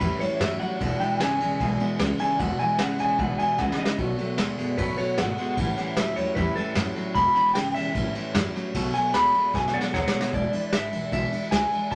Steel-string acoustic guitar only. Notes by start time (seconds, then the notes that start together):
0.00 A2 E3 G3 C#4 E4
0.20 G3 C#4 E4
0.40 E3 G3 C#4 E4
0.60 G3 C#4 E4
0.80 E2 B2 E3 G#3 D4 E4
1.00 E3 G#3 D4 E4
1.19 E3 G#3 D4 E4
1.40 E3 G#3 D4 E4
1.61 E2 B2 E3 G#3 D4 E4
1.80 E3 G#3 D4 E4
1.99 E3 G#3 D4 E4
2.19 E3 G#3 D4 E4
2.39 E2 B2 E3 G#3 D4 E4
2.60 E3 G#3 D4 E4
2.80 E3 G#3 D4 E4
2.99 E3 G#3 D4 E4
3.18 E2 B2 E3 G#3 D4 E4
3.38 E3 G#3 D4 E4
3.58 E3 G#3 D4 E4
3.77 E3 G#3 D4 E4
3.97 B2 D#3 A3 B3 F#4
4.18 A3 B3 F#4
4.37 D#3 A3 B3 F#4
4.57 A3 B3 F#4
4.78 B2 D#3 A3 B3 F#4
4.97 A3 B3 F#4
5.17 D#3 A3 B3 F#4
5.37 A3 B3 F#4
5.57 A2 E3 G3 C#4 E4
5.77 G3 C#4 E4
5.96 E3 G3 C#4 E4
6.17 G3 C#4 E4
6.36 A2 E3 G3 C#4 E4
6.56 G3 C#4 E4
6.76 E3 G3 C#4 E4
6.96 G3 C#4 E4
7.16 E2 B2 E3 G#3 D4 E4
7.36 E3 G#3 D4 E4
7.56 E3 G#3 D4 E4
7.75 E3 G#3 D4 E4
7.95 A2 E3 G3 C#4 E4
8.15 G3 C#4 E4
8.35 E3 G3 C#4 E4
8.55 G3 C#4 E4
8.75 B2 D#3 A3 B3 F#4
8.94 A3 B3 F#4
9.14 D#3 A3 B3 F#4
9.34 A3 B3 F#4
9.53 B2 D#3 A3 B3 F#4
9.74 A3 B3 F#4
9.93 D#3 A3 B3 F#4
10.12 A3 B3 F#4
10.32 E2 B2 E3 G#3 D4 E4
10.52 E3 G#3 D4 E4
10.72 E3 G#3 D4 E4
10.92 E3 G#3 D4 E4
11.11 E2 B2 E3 G#3 D4 E4
11.32 E3 G#3 D4 E4
11.52 E3 G#3 D4 E4
11.72 E3 G#3 D4 E4